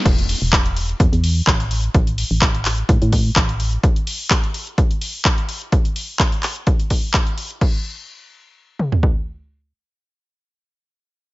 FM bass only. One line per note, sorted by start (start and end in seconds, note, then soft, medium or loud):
0.06 0.35 E1 loud
0.42 0.94 E1 medium
1.00 1.09 E2 loud
1.13 1.42 E2 loud
1.47 1.89 A1 loud
1.94 2.24 A1 medium
2.31 2.83 A1 medium
2.89 2.98 A2 medium
3.02 3.31 A2 loud
3.36 3.78 A1 loud